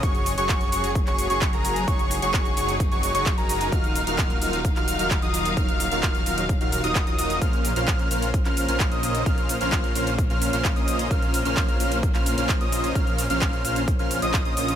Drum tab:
HH |xxoxxxoxxxoxxxox|xxoxxxoxxxoxxxox|xxoxxxoxxxoxxxox|xxoxxxoxxxoxxxox|
SH |xxxxxxxxxxxxxxxx|xxxxxxxxxxxxxxxx|xxxxxxxxxxxxxxxx|xxxxxxxxxxxxxxxx|
CP |----x----x--x---|----x-------x---|----x----x--x---|----x-------x---|
BD |o---o---o---o---|o---o---o---o---|o---o---o---o---|o---o---o---o---|

HH |xxoxxxoxxxoxxxox|xxoxxxoxxxoxxxox|xxoxxxoxxxoxxxox|xxoxxxoxxxoxxxox|
SH |xxxxxxxxxxxxxxxx|xxxxxxxxxxxxxxxx|xxxxxxxxxxxxxxxx|xxxxxxxxxxxxxxxx|
CP |----x----x--x---|----x-------x---|----x----x--x---|----x-------x---|
BD |o---o---o---o---|o---o---o---o---|o---o---o---o---|o---o---o---o---|